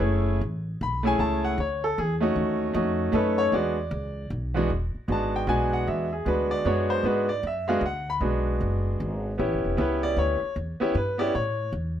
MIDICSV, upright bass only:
0, 0, Header, 1, 3, 480
1, 0, Start_track
1, 0, Tempo, 390117
1, 22, Time_signature, 3, 2, 24, 8
1, 14765, End_track
2, 0, Start_track
2, 0, Title_t, "Upright bass"
2, 0, Program_c, 0, 32
2, 0, Note_on_c, 0, 30, 83
2, 474, Note_off_c, 0, 30, 0
2, 508, Note_on_c, 0, 33, 87
2, 970, Note_off_c, 0, 33, 0
2, 997, Note_on_c, 0, 35, 93
2, 1454, Note_off_c, 0, 35, 0
2, 1464, Note_on_c, 0, 37, 86
2, 1928, Note_off_c, 0, 37, 0
2, 1942, Note_on_c, 0, 38, 93
2, 2406, Note_off_c, 0, 38, 0
2, 2437, Note_on_c, 0, 40, 95
2, 2891, Note_off_c, 0, 40, 0
2, 2899, Note_on_c, 0, 39, 85
2, 3364, Note_off_c, 0, 39, 0
2, 3376, Note_on_c, 0, 41, 99
2, 3843, Note_off_c, 0, 41, 0
2, 3850, Note_on_c, 0, 42, 97
2, 4320, Note_off_c, 0, 42, 0
2, 4332, Note_on_c, 0, 40, 84
2, 4801, Note_off_c, 0, 40, 0
2, 4811, Note_on_c, 0, 37, 98
2, 5281, Note_off_c, 0, 37, 0
2, 5295, Note_on_c, 0, 35, 93
2, 5763, Note_off_c, 0, 35, 0
2, 5780, Note_on_c, 0, 28, 76
2, 6065, Note_off_c, 0, 28, 0
2, 6253, Note_on_c, 0, 32, 88
2, 6723, Note_off_c, 0, 32, 0
2, 6730, Note_on_c, 0, 35, 91
2, 7202, Note_off_c, 0, 35, 0
2, 7226, Note_on_c, 0, 40, 82
2, 7691, Note_off_c, 0, 40, 0
2, 7702, Note_on_c, 0, 38, 91
2, 8169, Note_off_c, 0, 38, 0
2, 8184, Note_on_c, 0, 42, 91
2, 8645, Note_off_c, 0, 42, 0
2, 8652, Note_on_c, 0, 44, 87
2, 9125, Note_off_c, 0, 44, 0
2, 9143, Note_on_c, 0, 42, 92
2, 9602, Note_off_c, 0, 42, 0
2, 9610, Note_on_c, 0, 38, 96
2, 10084, Note_off_c, 0, 38, 0
2, 10096, Note_on_c, 0, 35, 83
2, 10568, Note_off_c, 0, 35, 0
2, 10589, Note_on_c, 0, 30, 92
2, 11055, Note_off_c, 0, 30, 0
2, 11075, Note_on_c, 0, 32, 89
2, 11538, Note_off_c, 0, 32, 0
2, 11558, Note_on_c, 0, 33, 83
2, 11729, Note_on_c, 0, 31, 57
2, 11747, Note_off_c, 0, 33, 0
2, 11865, Note_off_c, 0, 31, 0
2, 11872, Note_on_c, 0, 28, 63
2, 12020, Note_off_c, 0, 28, 0
2, 12035, Note_on_c, 0, 37, 97
2, 12497, Note_off_c, 0, 37, 0
2, 12508, Note_on_c, 0, 38, 96
2, 12793, Note_off_c, 0, 38, 0
2, 12992, Note_on_c, 0, 40, 87
2, 13275, Note_off_c, 0, 40, 0
2, 13469, Note_on_c, 0, 43, 94
2, 13933, Note_off_c, 0, 43, 0
2, 13965, Note_on_c, 0, 45, 95
2, 14421, Note_off_c, 0, 45, 0
2, 14427, Note_on_c, 0, 40, 92
2, 14765, Note_off_c, 0, 40, 0
2, 14765, End_track
3, 0, Start_track
3, 0, Title_t, "Muted upright bass strokes"
3, 6084, Note_on_c, 9, 29, 38
3, 6207, Note_off_c, 9, 29, 0
3, 12818, Note_on_c, 9, 29, 41
3, 12941, Note_off_c, 9, 29, 0
3, 13297, Note_on_c, 9, 29, 43
3, 13420, Note_off_c, 9, 29, 0
3, 14765, End_track
0, 0, End_of_file